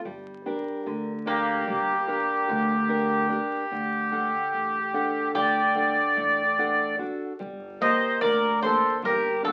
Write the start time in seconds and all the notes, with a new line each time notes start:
0.05 G1 G3
0.46 D4 G4 A#4
0.86 D2 D3
1.26 A#3 D4 G4 A#4
1.67 G1 G3
2.07 D4 G4 A#4
2.48 D2 D3
2.89 D4 G4 A#4
3.29 D4 G4 A#4
3.71 D2 D3
4.12 D4 A4 F#5
4.54 A1
4.94 D4 A4 F#5
5.35 D2 D3 G4 D5
5.75 D4 A4 F#5
6.17 A1 A3
6.58 D4 A4 F#5
6.99 D4 F#4 A4
7.40 G1 G3
7.81 A#3 G4 A#4 C5 D#5
8.21 D2 D3 A#4 D5
8.62 A#3 D4 G4 A4 C5
9.03 G1 G3 G4 A#4
9.43 A#3 D4 F#4 A4